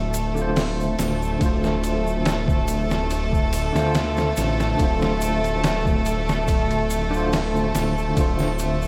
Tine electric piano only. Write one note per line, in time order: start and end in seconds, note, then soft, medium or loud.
0.00 0.30 D3 medium
0.00 0.31 A3 medium
0.00 0.32 F4 medium
0.00 0.34 C5 medium
0.35 1.35 D3 medium
0.35 1.36 A3 medium
0.39 1.37 F4 medium
0.39 1.39 C5 loud
1.39 3.68 D3 medium
1.39 3.69 A3 medium
1.43 3.71 F4 medium
1.43 3.72 C5 medium
3.72 4.73 D3 medium
3.72 4.74 A3 medium
3.77 4.75 F4 medium
3.77 4.76 C5 loud
4.77 7.06 D3 medium
4.77 7.07 A3 medium
4.82 7.09 F4 medium
4.82 7.10 C5 medium
7.10 8.11 D3 loud
7.10 8.12 A3 medium
7.15 8.13 F4 medium
7.15 8.15 C5 loud
8.14 8.88 D3 medium
8.14 8.88 A3 medium
8.19 8.88 F4 medium
8.19 8.88 C5 medium